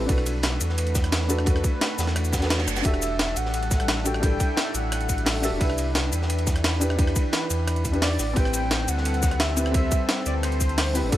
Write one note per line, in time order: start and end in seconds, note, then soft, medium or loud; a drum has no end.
0.00 0.08 A1 medium
0.00 0.11 C4 loud
0.00 0.11 E4 medium
0.00 0.11 G4 medium
0.00 0.11 B4 loud
0.06 0.59 B1 loud
0.06 2.82 A3 medium
0.06 1.26 D4 loud
0.06 8.15 D4 medium
0.06 1.27 F#4 medium
0.06 1.28 A4 medium
0.06 2.82 B4 medium
0.06 kick loud
0.06 closed hi-hat loud
0.06 ride medium
0.12 1.29 B4 loud
0.18 cross-stick soft
0.18 ride soft
0.26 closed hi-hat medium
0.26 ride medium
0.26 cabasa medium
0.43 snare loud
0.43 closed hi-hat medium
0.43 ride medium
0.52 ride soft
0.61 1.63 E2 loud
0.61 closed hi-hat medium
0.61 ride medium
0.61 cabasa medium
0.69 snare soft
0.78 closed hi-hat loud
0.78 ride medium
0.86 closed hi-hat soft
0.86 ride soft
0.95 kick loud
0.95 snare soft
0.95 closed hi-hat medium
0.95 ride medium
0.95 cabasa medium
1.04 cross-stick soft
1.04 closed hi-hat soft
1.12 snare loud
1.12 closed hi-hat loud
1.12 ride medium
1.21 snare soft
1.28 1.40 D4 medium
1.28 1.40 F#4 medium
1.28 1.41 A4 medium
1.28 1.41 B4 loud
1.28 closed hi-hat medium
1.28 ride medium
1.28 cabasa medium
1.39 cross-stick soft
1.44 2.37 D4 loud
1.44 2.39 F#4 medium
1.44 2.41 A4 medium
1.44 kick loud
1.44 closed hi-hat loud
1.44 ride medium
1.50 2.42 B4 loud
1.56 cross-stick soft
1.64 kick loud
1.64 closed hi-hat medium
1.64 ride medium
1.64 cabasa medium
1.81 snare loud
1.81 closed hi-hat loud
1.81 ride medium
1.99 2.67 E2 loud
1.99 snare loud
1.99 closed hi-hat medium
1.99 ride medium
1.99 cabasa medium
2.07 snare soft
2.16 cross-stick medium
2.16 closed hi-hat medium
2.16 ride medium
2.16 reverse cymbal medium
2.25 closed hi-hat soft
2.25 cabasa soft
2.33 kick medium
2.33 snare loud
2.33 closed hi-hat medium
2.33 ride medium
2.33 cabasa medium
2.39 2.81 D4 medium
2.39 2.82 F#4 medium
2.39 2.83 A4 medium
2.39 snare loud
2.39 closed hi-hat soft
2.39 ride medium
2.45 2.84 B4 loud
2.50 snare loud
2.50 closed hi-hat loud
2.50 ride medium
2.59 snare loud
2.59 ride medium
2.68 2.83 F#1 medium
2.68 cross-stick soft
2.68 closed hi-hat medium
2.68 ride medium
2.68 cabasa medium
2.76 snare medium
2.76 ride medium
2.76 cabasa soft
2.82 3.35 E1 loud
2.82 5.58 G3 medium
2.82 4.02 D4 loud
2.82 4.03 F#4 medium
2.82 4.04 G4 medium
2.82 5.58 A4 medium
2.82 5.58 E5 medium
2.82 3.38 E5 loud
2.82 kick loud
2.82 closed hi-hat loud
2.82 ride medium
2.88 4.05 A4 loud
2.94 cross-stick soft
2.94 ride soft
3.02 closed hi-hat medium
3.02 ride medium
3.02 cabasa medium
3.19 snare loud
3.19 closed hi-hat medium
3.19 ride medium
3.28 ride soft
3.36 4.39 A1 loud
3.36 4.07 F#5 loud
3.36 closed hi-hat medium
3.36 ride medium
3.36 cabasa medium
3.46 snare soft
3.54 closed hi-hat loud
3.54 ride medium
3.63 closed hi-hat soft
3.63 ride soft
3.71 kick loud
3.71 snare soft
3.71 closed hi-hat medium
3.71 ride medium
3.71 cabasa medium
3.80 cross-stick soft
3.80 closed hi-hat soft
3.88 snare loud
3.88 closed hi-hat loud
3.88 ride medium
3.97 snare soft
4.04 4.16 D4 medium
4.04 4.16 F#4 medium
4.04 4.17 G4 medium
4.04 4.17 A4 loud
4.04 4.76 G5 loud
4.04 closed hi-hat medium
4.04 ride medium
4.04 cabasa medium
4.14 cross-stick medium
4.20 5.40 D4 loud
4.20 5.41 E4 medium
4.20 5.42 G4 medium
4.20 kick loud
4.20 closed hi-hat medium
4.20 ride medium
4.26 5.43 A4 loud
4.40 kick loud
4.40 closed hi-hat medium
4.40 ride medium
4.40 cabasa medium
4.57 snare loud
4.57 closed hi-hat medium
4.57 ride medium
4.75 5.51 A1 loud
4.75 5.43 F#5 loud
4.75 closed hi-hat medium
4.75 ride medium
4.75 cabasa medium
4.92 cross-stick medium
4.92 closed hi-hat loud
4.92 ride medium
5.01 closed hi-hat soft
5.09 kick medium
5.09 closed hi-hat medium
5.09 ride medium
5.09 cabasa medium
5.18 closed hi-hat soft
5.26 snare loud
5.26 closed hi-hat loud
5.26 open hi-hat medium
5.42 5.54 D4 medium
5.42 5.54 F#4 medium
5.42 5.55 G4 medium
5.42 5.55 A4 loud
5.42 5.92 E5 medium
5.42 snare soft
5.42 closed hi-hat medium
5.42 ride medium
5.42 cabasa medium
5.52 5.60 E1 medium
5.58 6.11 C2 loud
5.58 8.17 E3 medium
5.58 6.78 D4 loud
5.58 6.79 E4 medium
5.58 6.80 G4 medium
5.58 8.17 B4 medium
5.58 kick loud
5.58 closed hi-hat medium
5.58 ride loud
5.63 6.81 B4 loud
5.69 cross-stick soft
5.69 ride soft
5.78 closed hi-hat medium
5.78 ride medium
5.78 cabasa medium
5.95 snare loud
5.95 closed hi-hat medium
5.95 ride medium
6.03 ride soft
6.13 7.15 E2 loud
6.13 closed hi-hat medium
6.13 ride medium
6.13 cabasa medium
6.22 snare soft
6.30 closed hi-hat medium
6.30 ride medium
6.39 closed hi-hat soft
6.39 ride soft
6.47 kick loud
6.47 snare soft
6.47 closed hi-hat medium
6.47 ride medium
6.47 cabasa medium
6.56 cross-stick soft
6.56 closed hi-hat soft
6.64 snare loud
6.64 closed hi-hat medium
6.64 ride medium
6.73 snare soft
6.80 6.92 D4 medium
6.80 6.92 E4 medium
6.80 6.92 G4 medium
6.80 6.93 B4 loud
6.80 closed hi-hat medium
6.80 ride medium
6.80 cabasa medium
6.90 cross-stick soft
6.96 7.90 D4 loud
6.96 7.91 E4 medium
6.96 7.92 G4 medium
6.96 kick loud
6.96 closed hi-hat medium
6.96 ride medium
7.01 7.93 B4 loud
7.07 cross-stick soft
7.16 kick loud
7.16 closed hi-hat medium
7.16 ride medium
7.16 cabasa medium
7.33 snare loud
7.33 closed hi-hat medium
7.33 ride medium
7.50 8.18 E2 loud
7.50 closed hi-hat medium
7.50 ride medium
7.50 cabasa medium
7.68 cross-stick medium
7.68 closed hi-hat medium
7.68 ride medium
7.76 closed hi-hat soft
7.85 kick medium
7.85 closed hi-hat medium
7.85 ride medium
7.85 cabasa medium
7.92 8.18 D4 medium
7.92 8.18 E4 medium
7.92 8.19 G4 medium
7.92 8.19 B4 loud
7.92 closed hi-hat soft
8.02 8.38 D5 loud
8.02 snare loud
8.02 closed hi-hat medium
8.02 open hi-hat medium
8.19 8.35 A1 loud
8.19 11.10 G3 medium
8.19 11.10 C4 medium
8.19 11.10 A4 medium
8.19 snare soft
8.19 closed hi-hat medium
8.19 ride medium
8.19 cabasa medium
8.34 8.87 A1 loud
8.34 9.54 C4 loud
8.34 9.55 E4 medium
8.34 9.56 G4 medium
8.34 8.90 G5 loud
8.34 kick loud
8.34 closed hi-hat medium
8.34 ride medium
8.39 9.57 B4 loud
8.45 cross-stick soft
8.45 ride soft
8.53 closed hi-hat medium
8.53 ride medium
8.53 cabasa medium
8.71 snare loud
8.71 closed hi-hat medium
8.71 ride medium
8.80 ride soft
8.88 9.90 D2 loud
8.88 9.42 F#5 loud
8.88 closed hi-hat medium
8.88 ride medium
8.88 cabasa medium
8.97 snare soft
9.05 closed hi-hat medium
9.05 ride medium
9.14 closed hi-hat soft
9.14 ride soft
9.23 kick loud
9.23 snare soft
9.23 closed hi-hat medium
9.23 ride medium
9.23 cabasa medium
9.31 cross-stick soft
9.31 closed hi-hat soft
9.40 9.74 E5 loud
9.40 snare loud
9.40 closed hi-hat medium
9.40 ride medium
9.48 snare soft
9.56 9.68 C4 medium
9.56 9.68 E4 medium
9.56 9.68 G4 medium
9.56 9.69 B4 loud
9.56 closed hi-hat medium
9.56 ride medium
9.56 cabasa medium
9.66 cross-stick soft
9.72 10.92 C4 loud
9.72 10.93 E4 medium
9.72 10.94 G4 medium
9.72 10.23 E5 loud
9.72 kick loud
9.72 closed hi-hat medium
9.72 ride loud
9.78 10.95 C5 loud
9.91 kick loud
9.91 closed hi-hat medium
9.91 ride medium
9.91 cabasa medium
10.09 snare loud
10.09 closed hi-hat medium
10.09 ride medium
10.26 11.03 D2 loud
10.26 10.34 D5 loud
10.26 closed hi-hat medium
10.26 ride medium
10.26 cabasa medium
10.43 10.97 C5 loud
10.43 cross-stick medium
10.43 closed hi-hat medium
10.43 ride medium
10.52 closed hi-hat soft
10.61 kick medium
10.61 closed hi-hat medium
10.61 ride medium
10.61 cabasa medium
10.69 closed hi-hat soft
10.78 snare loud
10.78 closed hi-hat medium
10.78 open hi-hat medium
10.94 11.05 C4 medium
10.94 11.06 E4 medium
10.94 11.06 G4 medium
10.94 11.12 B4 medium
10.94 11.07 B4 loud
10.94 snare soft
10.94 closed hi-hat medium
10.94 ride medium
10.94 cabasa medium
11.04 11.12 A1 medium
11.09 11.17 B1 loud
11.09 11.17 A3 medium
11.09 11.17 D4 loud
11.09 11.17 D4 medium
11.09 11.17 F#4 medium
11.09 11.17 A4 loud
11.09 11.17 A4 medium
11.09 kick loud
11.09 closed hi-hat medium
11.09 ride medium